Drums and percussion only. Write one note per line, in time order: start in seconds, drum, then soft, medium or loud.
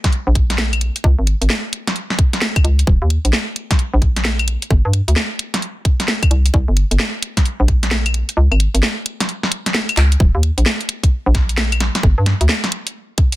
0.04 kick medium
0.04 snare medium
0.04 closed hi-hat medium
0.13 closed hi-hat soft
0.35 kick loud
0.35 closed hi-hat loud
0.50 snare medium
0.50 closed hi-hat medium
0.58 snare loud
0.73 closed hi-hat soft
0.73 claves medium
0.81 closed hi-hat loud
0.96 closed hi-hat medium
1.04 kick loud
1.27 closed hi-hat loud
1.42 closed hi-hat medium
1.50 snare loud
1.73 closed hi-hat loud
1.87 snare medium
1.87 closed hi-hat medium
1.96 closed hi-hat soft
2.10 snare medium
2.19 kick loud
2.19 closed hi-hat loud
2.33 snare soft
2.33 closed hi-hat medium
2.42 snare loud
2.56 kick loud
2.56 closed hi-hat medium
2.56 claves medium
2.65 closed hi-hat loud
2.79 closed hi-hat medium
2.87 kick loud
3.10 closed hi-hat loud
3.25 closed hi-hat medium
3.33 snare loud
3.56 closed hi-hat loud
3.71 kick medium
3.71 snare medium
3.71 closed hi-hat medium
3.79 closed hi-hat soft
4.02 kick loud
4.02 closed hi-hat loud
4.16 snare soft
4.16 closed hi-hat medium
4.25 snare loud
4.39 closed hi-hat medium
4.39 claves medium
4.48 closed hi-hat loud
4.62 closed hi-hat medium
4.71 kick loud
4.93 closed hi-hat loud
5.08 closed hi-hat medium
5.16 snare loud
5.39 closed hi-hat loud
5.54 snare medium
5.54 closed hi-hat medium
5.62 closed hi-hat soft
5.85 kick loud
5.85 closed hi-hat loud
6.00 snare soft
6.00 closed hi-hat medium
6.08 snare loud
6.23 kick loud
6.23 closed hi-hat medium
6.23 claves medium
6.31 closed hi-hat loud
6.46 closed hi-hat medium
6.54 kick loud
6.77 closed hi-hat loud
6.91 closed hi-hat medium
7.00 snare loud
7.22 closed hi-hat loud
7.37 kick medium
7.37 snare medium
7.37 closed hi-hat medium
7.45 closed hi-hat soft
7.68 kick loud
7.68 closed hi-hat loud
7.83 snare medium
7.83 closed hi-hat medium
7.91 snare loud
8.06 closed hi-hat medium
8.06 claves medium
8.14 closed hi-hat loud
8.29 closed hi-hat medium
8.52 claves medium
8.60 closed hi-hat loud
8.75 closed hi-hat medium
8.83 snare loud
9.06 closed hi-hat loud
9.20 snare medium
9.20 closed hi-hat medium
9.29 closed hi-hat soft
9.43 snare medium
9.52 closed hi-hat loud
9.66 snare medium
9.66 closed hi-hat medium
9.74 snare loud
9.89 closed hi-hat medium
9.89 claves medium
9.97 clap medium
9.97 closed hi-hat loud
10.12 closed hi-hat medium
10.20 kick loud
10.43 closed hi-hat loud
10.58 closed hi-hat medium
10.66 snare loud
10.81 closed hi-hat soft
10.89 closed hi-hat loud
11.03 kick medium
11.03 closed hi-hat medium
11.35 kick loud
11.35 snare medium
11.35 closed hi-hat loud
11.49 closed hi-hat medium
11.58 snare loud
11.72 closed hi-hat medium
11.72 claves medium
11.80 snare medium
11.80 closed hi-hat loud
11.95 snare medium
11.95 closed hi-hat medium
12.03 kick loud
12.26 snare medium
12.26 closed hi-hat loud
12.41 closed hi-hat medium
12.49 snare loud
12.64 snare medium
12.64 closed hi-hat soft
12.72 closed hi-hat loud
12.87 closed hi-hat medium
13.18 kick loud
13.18 closed hi-hat loud
13.32 closed hi-hat medium